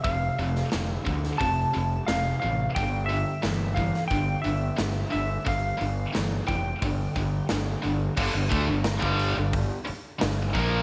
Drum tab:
CC |----------------|----------------|----------------|x---------------|
HH |o-o-o-o-o-o-o-o-|o-o-o-o-o-o-o-o-|o-o-o-o-o-o-o-o-|--o-o-o-o-o-o-o-|
SD |---oo--o----o---|----o--o----o---|----o-------o---|----o-------o---|
BD |o-----o-o-------|o-----o-o-------|o-----o-o-o-----|o-o--o--o-----o-|